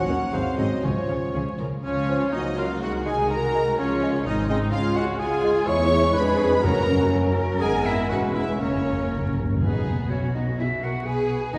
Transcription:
Already playing: bassoon F#3, french horn section F#3 C#4, clarinet F#4, cor anglais C#5, flute F#5, violin section F#5
0.07 cello section D#2, double bass section D#2, viola section F#3 C#4, violin section D#4 A#4
0.31 double bass section G#1, cello section G#2, french horn section F#3 C4, bassoon F#3, viola section F#3 C4, violin section D#4 G#4 F5, clarinet G#4, cor anglais C5, flute F5
0.57 double bass section G#1, cello section G#2, viola section F#3 C4, violin section D#4 G#4 D#5, flute D#5
0.82 double bass section C#2, cello section C#3, timpani C#3, bassoon F3, viola section F3 C#4, french horn section F3 C#4, violin section F4 G#4 C#5, clarinet F4, flute C#5, cor anglais C#5
1.07 double bass section C#2, cello section C#3, viola section F3 C#4, violin section F4 G#4
1.33 double bass section C#2, cello section C#3, viola section F3 C#4, violin section G#4
1.59 double bass section C#2, cello section C#3, viola section F3 C#4, violin section A#4
1.83 double bass section C#2, viola section F3 C#4, violin section C#4 C#5, cor anglais C#4, french horn section C#4, cello section F4, flute C#5
2.09 bassoon F3, clarinet C#5
2.32 double bass section C#2, viola section F#3 A#3, cor anglais D#4, violin section D#4 D#5, french horn section D#4, cello section F#4, flute D#5
2.56 bassoon F#3, violin section F4 F5, cor anglais F4, french horn section F4, clarinet A#4, flute F5
2.81 double bass section C2, viola section D#3 G#3, cello section D#4, violin section F#4 F#5, cor anglais F#4, french horn section F#4, flute F#5
3.04 bassoon G#3, violin section G#4 G#5, cor anglais G#4, french horn section G#4, clarinet G#4, flute G#5
3.29 cello section F#4, violin section A#4 A#5, french horn section A#4, cor anglais A#4, flute A#5
3.55 bassoon G#3, clarinet G#4
3.77 double bass section C#2, viola section F3 G#3, violin section C#4 C#5, french horn section C#4, cor anglais C#4, cello section F4, flute C#5
4.03 bassoon G#3, clarinet F4
4.25 double bass section G#1, viola section G#3 C4, violin section D#4 D#5, french horn section D#4, cello section D#4, cor anglais D#4, flute D#5
4.47 bassoon G#3, clarinet C4, violin section D#4 D#5, cor anglais D#4, french horn section D#4, flute D#5
4.71 double bass section C#2, viola section G#3 F4, cello section C#4, violin section F4 F5, cor anglais F4, french horn section F4, flute F5
4.95 bassoon G#3, clarinet F4, violin section F#4 F#5, cor anglais F#4, french horn section F#4, flute F#5
5.19 viola section G#3 F4, cello section F4, cor anglais G#4, violin section G#4 G#5, french horn section G#4, flute G#5
5.44 bassoon G#3, clarinet F4
5.67 double bass section E2, viola section G#3 E4, bassoon G#3, clarinet E4, cello section E4, violin section C#5 C#6, cor anglais C#5, french horn section C#5, flute C#6
6.13 double bass section F2, clarinet D4, viola section D4, cello section G#4, cor anglais B4, violin section B4 B5, french horn section B4, flute B5
6.62 double bass section F#2, timpani F#2, bassoon F#3, viola section F#3 C#4, clarinet C#4, cello section F#4, cor anglais A#4, violin section A#4 A#5, french horn section A#4, flute A#5
7.12 cello section A#4
7.60 double bass section G#1, viola section D#3 B3, bassoon G#3, clarinet B3, cor anglais G#4, french horn section G#4, violin section G#4 G#5, flute G#5
7.85 cor anglais E4, violin section E4 E5, french horn section E4, flute E5
8.09 double bass section E1, viola section G#3 C#4, clarinet C#4, french horn section F#4, cor anglais F#4, violin section F#4 F#5, cello section B4, flute F#5
8.34 french horn section E4, violin section E4 E5, cor anglais E4, flute E5
8.58 double bass section F#1, timpani F#2, viola section A#3, bassoon A#3, french horn section C#4, cor anglais C#4, violin section C#4 C#5, cello section A#4, flute C#5
8.69 timpani F#2
8.77 timpani F#2
8.84 timpani F#2
8.92 timpani F#2
9.00 timpani F#2
9.08 timpani F#2
9.16 timpani F#2
9.23 timpani F#2
9.31 timpani F#2
9.39 timpani F#2
9.46 timpani F#2
9.54 timpani F#2
9.61 double bass section B1, cello section B2, timpani B2, viola section B3, violin section D#4 G#4, flute B4
10.10 viola section C#4, violin section E4 F#4, flute C#5
10.34 viola section D#4, violin section F#4, flute D#5
10.58 viola section E4, violin section G#4, flute E5
10.82 viola section F#4, violin section A#4, flute F#5
11.06 violin section G#4 B4, viola section G#4, flute G#5
11.53 double bass section B1, cello section B2, timpani B2, viola section D#4, violin section F#4 B4, flute D#5

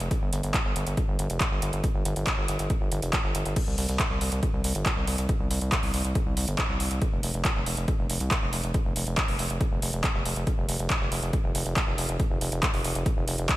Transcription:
0.00 analog synth bass F1, closed hi-hat
0.11 kick, closed hi-hat
0.22 analog synth bass G1
0.33 analog synth bass G1, closed hi-hat
0.43 analog synth bass G1, closed hi-hat
0.54 kick, clap, closed hi-hat
0.65 analog synth bass G1
0.76 analog synth bass G1, closed hi-hat
0.87 analog synth bass G1, closed hi-hat
0.97 kick, closed hi-hat
1.08 analog synth bass G1
1.19 analog synth bass G1, closed hi-hat
1.30 analog synth bass F1, closed hi-hat
1.40 kick, clap, closed hi-hat
1.51 analog synth bass G1
1.62 analog synth bass G1, closed hi-hat
1.73 analog synth bass G1, closed hi-hat
1.84 kick, closed hi-hat
1.95 analog synth bass G1
2.05 analog synth bass G1, closed hi-hat
2.16 analog synth bass G1, closed hi-hat
2.27 kick, clap, closed hi-hat
2.38 analog synth bass G1
2.48 analog synth bass G1, closed hi-hat
2.59 analog synth bass G1, closed hi-hat
2.70 kick, closed hi-hat
2.81 analog synth bass G1
2.92 analog synth bass G1, closed hi-hat
3.02 analog synth bass F1, closed hi-hat
3.13 kick, clap, closed hi-hat
3.24 analog synth bass G1
3.35 analog synth bass G1, closed hi-hat
3.46 analog synth bass G1, closed hi-hat
3.56 kick, closed hi-hat, crash
3.67 analog synth bass C2
3.78 analog synth bass C2, open hi-hat
3.89 analog synth bass C2, closed hi-hat
4.00 kick, clap, closed hi-hat
4.10 analog synth bass C2
4.21 analog synth bass C2, open hi-hat
4.32 analog synth bass C2, closed hi-hat
4.43 kick, closed hi-hat
4.53 analog synth bass C2
4.64 analog synth bass C2, open hi-hat
4.75 analog synth bass G1, closed hi-hat
4.86 kick, clap, closed hi-hat
4.97 analog synth bass C2
5.07 analog synth bass C2, open hi-hat
5.18 analog synth bass C2, closed hi-hat
5.29 kick, closed hi-hat
5.40 analog synth bass C2
5.51 analog synth bass C2, open hi-hat
5.61 analog synth bass C2, closed hi-hat
5.72 kick, clap, closed hi-hat
5.83 analog synth bass C2, open hi-hat
5.94 analog synth bass C2, open hi-hat
6.05 analog synth bass C2, closed hi-hat
6.15 kick, closed hi-hat
6.26 analog synth bass C2
6.37 analog synth bass C2, open hi-hat
6.48 analog synth bass G1, closed hi-hat
6.58 kick, clap, closed hi-hat
6.69 analog synth bass C2
6.80 analog synth bass C2, open hi-hat
6.91 analog synth bass C2, closed hi-hat
7.02 kick, closed hi-hat
7.12 analog synth bass F1
7.23 analog synth bass F1, open hi-hat
7.34 analog synth bass F1, closed hi-hat
7.45 kick, clap, closed hi-hat
7.56 analog synth bass F1
7.66 analog synth bass F1, open hi-hat
7.77 analog synth bass F1, closed hi-hat
7.88 kick, closed hi-hat
7.99 analog synth bass F1
8.10 analog synth bass F1, open hi-hat
8.20 analog synth bass C2, closed hi-hat
8.31 kick, clap, closed hi-hat
8.42 analog synth bass F1
8.53 analog synth bass F1, open hi-hat
8.64 analog synth bass F1, closed hi-hat
8.74 kick, closed hi-hat
8.85 analog synth bass F1
8.96 analog synth bass F1, open hi-hat
9.07 analog synth bass F1, closed hi-hat
9.17 kick, clap, closed hi-hat
9.28 analog synth bass F1, open hi-hat
9.39 analog synth bass F1, open hi-hat
9.50 analog synth bass F1, closed hi-hat
9.61 kick, closed hi-hat
9.71 analog synth bass F1
9.82 analog synth bass F1, open hi-hat
9.93 analog synth bass F1, closed hi-hat
10.04 kick, clap, closed hi-hat
10.15 analog synth bass F1
10.25 analog synth bass F1, open hi-hat
10.36 analog synth bass F1, closed hi-hat
10.47 kick, closed hi-hat
10.58 analog synth bass F1
10.68 analog synth bass F1, open hi-hat
10.79 analog synth bass F1, closed hi-hat
10.90 kick, clap, closed hi-hat
11.01 analog synth bass F1
11.12 analog synth bass F1, open hi-hat
11.22 analog synth bass F1, closed hi-hat
11.33 kick, closed hi-hat
11.44 analog synth bass F1
11.55 analog synth bass F1, open hi-hat
11.66 analog synth bass F1, closed hi-hat
11.76 kick, clap, closed hi-hat
11.87 analog synth bass F1
11.98 analog synth bass F1, open hi-hat
12.09 analog synth bass F1, closed hi-hat
12.20 kick, closed hi-hat
12.30 analog synth bass F1
12.41 analog synth bass F1, open hi-hat
12.52 analog synth bass F1, closed hi-hat
12.63 kick, clap, closed hi-hat
12.73 analog synth bass F1, open hi-hat
12.84 analog synth bass F1, open hi-hat
12.95 analog synth bass F1, closed hi-hat
13.06 kick, closed hi-hat
13.17 analog synth bass F1
13.28 analog synth bass F1, open hi-hat
13.38 analog synth bass F1, closed hi-hat
13.49 kick, clap, closed hi-hat

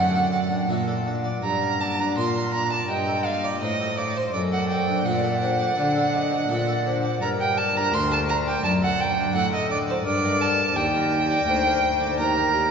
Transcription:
Already playing: harpsichord F#2 A3, cello F#2, recorder F#5, violin F#5
0.14 harpsichord A4
0.32 harpsichord D5
0.51 harpsichord D4
0.69 harpsichord A#2 A3, cello A#2
0.87 harpsichord A4
1.06 harpsichord D4
1.24 harpsichord D5
1.43 harpsichord G2, cello G2, violin A#5
1.62 harpsichord A#4
1.81 harpsichord D5, violin A5
1.99 harpsichord D4, violin A#5
2.17 cello A#2, harpsichord A#2 A#3, violin C6
2.35 harpsichord A#4
2.53 harpsichord D4, violin A#5
2.71 harpsichord D5, violin A5
2.89 harpsichord G2, cello G2, recorder D#5, violin G5
3.07 harpsichord A4
3.25 harpsichord D#5, violin F5
3.44 harpsichord C5, violin D5
3.61 cello A2, harpsichord A2 D#4, recorder C5, violin D#5
3.80 harpsichord A4
3.98 harpsichord D#4, violin D5
4.16 harpsichord C5, violin C5
4.33 cello F#2, harpsichord F#2, recorder A4, violin D5
4.51 harpsichord A4, violin F#5
4.69 harpsichord D5, violin G5
4.88 harpsichord D4
5.05 cello A#2, harpsichord A#2 A3, recorder D5, violin F#5
5.24 harpsichord A4
5.41 harpsichord D4, recorder C5
5.60 harpsichord D5
5.77 cello D3, harpsichord D3, recorder D5
5.95 harpsichord A4
6.13 harpsichord D5, recorder D#5
6.31 harpsichord D4
6.49 cello A#2, harpsichord A#2 A3, recorder D5
6.67 harpsichord A4
6.85 harpsichord D4, recorder C5
7.03 harpsichord D5
7.21 cello G2, harpsichord G2, recorder A#4, violin A#5
7.39 harpsichord G4, violin G5
7.57 harpsichord D5, violin A5
7.76 harpsichord D4, violin A#5
7.92 cello D2, harpsichord D2, violin C6
8.11 harpsichord G4, violin A5
8.28 harpsichord D4, violin A#5
8.46 harpsichord D5, violin G5
8.63 harpsichord F#2, cello F#2, recorder D5, violin A5
8.82 harpsichord A4, violin F#5
8.99 harpsichord D5, violin G5
9.17 harpsichord D4
9.34 cello A2, harpsichord A2 A3, recorder A4, violin F#5
9.53 harpsichord A4, violin D#5
9.70 harpsichord D4, violin D5
9.88 violin C5, harpsichord D5
10.05 cello G2, harpsichord G2, recorder A#4, violin D5
10.23 harpsichord A#4
10.41 harpsichord G5, violin A5
10.59 harpsichord D5
10.76 cello D#2, harpsichord D#2 G4, recorder D5, violin G5
10.95 harpsichord A#4
11.12 harpsichord G4
11.30 harpsichord D5
11.47 cello D2, harpsichord D2 A#3, recorder C5
11.66 harpsichord A#4
11.83 harpsichord G5
12.00 harpsichord D5
12.18 harpsichord D#2 G4, cello D#2, recorder A#4, violin A#5
12.36 harpsichord A#4
12.54 harpsichord G4

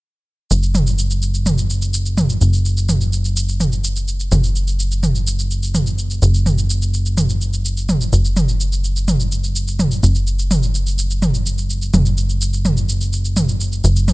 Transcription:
0.51 analog synth bass F#1, shaker
0.63 shaker
0.75 mid tom, shaker
0.87 shaker
0.99 shaker
1.10 shaker
1.22 shaker
1.34 shaker
1.46 mid tom, shaker
1.58 shaker
1.70 shaker
1.82 shaker
1.94 shaker
2.06 shaker
2.18 mid tom, shaker
2.30 shaker
2.41 analog synth bass F#1, shaker
2.53 shaker
2.65 shaker
2.77 shaker
2.89 mid tom, shaker
3.01 shaker
3.13 shaker
3.25 shaker
3.37 shaker
3.49 shaker
3.60 mid tom, shaker
3.72 shaker
3.84 shaker
3.96 shaker
4.08 shaker
4.20 shaker
4.32 analog synth bass F#1, mid tom, shaker
4.44 shaker
4.56 shaker
4.68 shaker
4.79 shaker
4.91 shaker
5.03 mid tom, shaker
5.15 shaker
5.27 shaker
5.39 shaker
5.51 shaker
5.63 shaker
5.75 mid tom, shaker
5.87 shaker
5.98 shaker
6.10 shaker
6.22 analog synth bass F#1, shaker
6.34 shaker
6.46 mid tom, shaker
6.58 shaker
6.70 shaker
6.82 shaker
6.94 shaker
7.06 shaker
7.18 mid tom, shaker
7.29 shaker
7.41 shaker
7.53 shaker
7.65 shaker
7.77 shaker
7.89 mid tom, shaker
8.01 shaker
8.13 analog synth bass F#1, shaker
8.25 shaker
8.37 mid tom, shaker
8.49 shaker
8.60 shaker
8.72 shaker
8.84 shaker
8.96 shaker
9.08 mid tom, shaker
9.20 shaker
9.32 shaker
9.44 shaker
9.56 shaker
9.68 shaker
9.79 mid tom, shaker
9.91 shaker
10.03 analog synth bass F#1, shaker
10.15 shaker
10.27 shaker
10.39 shaker
10.51 mid tom, shaker
10.63 shaker
10.75 shaker
10.87 shaker
10.98 shaker
11.10 shaker
11.22 mid tom, shaker
11.34 shaker
11.46 shaker
11.58 shaker
11.70 shaker
11.82 shaker
11.94 analog synth bass F#1, mid tom, shaker
12.06 shaker
12.18 shaker
12.29 shaker
12.41 shaker
12.53 shaker
12.65 mid tom, shaker
12.77 shaker
12.89 shaker
13.01 shaker
13.13 shaker
13.25 shaker
13.37 mid tom, shaker
13.49 shaker
13.60 shaker
13.72 shaker
13.84 analog synth bass F#1, shaker
13.96 shaker
14.08 mid tom, shaker

